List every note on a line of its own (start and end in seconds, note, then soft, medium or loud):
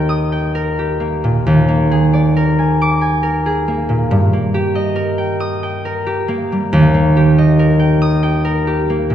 0.00 1.45 D#2 medium
0.00 0.99 A#3 soft
0.00 0.78 G4 medium
0.00 0.54 A#4 medium
0.00 1.49 D#5 medium
0.00 0.31 G5 medium
0.00 1.65 A#5 medium
0.09 1.49 D#6 medium
0.32 1.49 G5 medium
0.55 2.35 A#4 medium
0.79 1.50 G4 medium
1.00 1.67 A#3 soft
1.24 1.49 A#2 medium
1.47 4.15 D#2 medium
1.68 3.67 A#3 medium
1.91 3.45 G#4 medium
2.13 4.14 D5 medium
2.37 3.22 A#4 medium
2.59 3.00 G#5 medium
2.82 4.15 D6 medium
3.01 4.14 G#5 medium
3.23 4.94 A#4 medium
3.46 4.15 G#4 medium
3.68 4.32 A#3 medium
3.89 4.14 A#2 medium
4.11 6.75 G2 medium
4.33 6.27 A#3 soft
4.54 6.05 G4 medium
4.75 7.37 D#5 medium
4.96 5.84 A#4 medium
5.18 5.62 G5 medium
5.40 8.01 D#6 medium
5.63 7.78 G5 medium
5.85 7.58 A#4 medium
6.07 7.15 G4 medium
6.28 6.93 A#3 medium
6.52 9.15 G3 medium
6.73 9.15 D#2 medium
6.94 8.88 A#3 medium
7.17 8.66 G4 medium
7.38 9.15 D#5 medium
7.59 8.44 A#4 medium
7.79 8.22 G5 medium
8.02 9.15 D#6 loud
8.23 9.15 G5 medium
8.45 9.15 A#4 medium
8.67 9.15 G4 medium
8.90 9.15 A#3 medium
9.10 9.15 A#2 medium